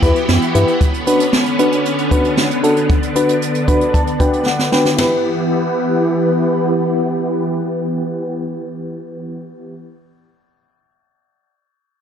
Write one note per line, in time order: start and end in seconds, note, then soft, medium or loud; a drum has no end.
0.00 0.12 E2 loud
0.00 0.77 E3 medium
0.00 4.94 B3 medium
0.00 0.19 E4 medium
0.00 0.77 F#4 medium
0.00 0.77 G4 medium
0.00 0.19 G4 medium
0.00 0.19 B4 medium
0.00 kick medium
0.00 closed hi-hat medium
0.16 closed hi-hat medium
0.29 0.38 F#2 medium
0.29 snare loud
0.42 closed hi-hat medium
0.55 0.64 G2 medium
0.55 0.71 E4 medium
0.55 0.71 G4 medium
0.55 0.71 B4 medium
0.55 closed hi-hat medium
0.68 closed hi-hat medium
0.81 4.94 D3 medium
0.81 2.88 C#4 medium
0.81 kick loud
0.81 closed hi-hat medium
0.94 closed hi-hat soft
1.07 1.23 D4 medium
1.07 1.23 F#4 medium
1.07 1.23 B4 medium
1.07 closed hi-hat medium
1.20 closed hi-hat medium
1.33 snare loud
1.46 closed hi-hat medium
1.59 1.75 D4 medium
1.59 1.75 F#4 medium
1.59 1.75 B4 medium
1.59 closed hi-hat medium
1.72 closed hi-hat medium
1.85 closed hi-hat medium
1.98 closed hi-hat soft
2.11 2.27 D4 medium
2.11 2.27 F#4 medium
2.11 2.27 B4 medium
2.11 kick medium
2.11 closed hi-hat medium
2.25 closed hi-hat medium
2.37 snare loud
2.51 closed hi-hat soft
2.64 2.80 D4 medium
2.64 2.80 F#4 medium
2.64 2.80 A4 medium
2.64 closed hi-hat medium
2.77 closed hi-hat medium
2.90 4.96 D4 medium
2.90 kick loud
2.90 closed hi-hat medium
3.03 closed hi-hat soft
3.16 3.32 D4 medium
3.16 3.32 F#4 medium
3.16 3.32 B4 medium
3.16 closed hi-hat medium
3.29 closed hi-hat medium
3.42 closed hi-hat medium
3.55 closed hi-hat medium
3.68 3.84 D4 medium
3.68 3.84 F#4 medium
3.68 3.84 B4 medium
3.68 3.92 B5 medium
3.68 kick medium
3.68 closed hi-hat medium
3.81 closed hi-hat medium
3.94 4.18 A5 medium
3.94 kick medium
3.94 closed hi-hat medium
4.07 closed hi-hat soft
4.20 4.36 D4 medium
4.20 4.36 F#4 medium
4.20 4.36 B4 medium
4.20 4.44 G5 medium
4.20 kick medium
4.20 closed hi-hat medium
4.33 closed hi-hat soft
4.46 4.70 F#5 medium
4.46 snare medium
4.59 snare medium
4.72 4.88 D4 medium
4.72 4.88 F#4 medium
4.72 4.88 B4 medium
4.72 4.97 G5 medium
4.72 snare medium
4.85 snare medium
4.97 9.73 E3 medium
4.97 9.73 B3 medium
4.97 9.71 E4 medium
4.97 9.73 G4 medium
4.97 9.75 B4 medium
4.97 9.73 F#5 medium
4.97 snare medium
4.97 floor tom medium
4.97 ride bell medium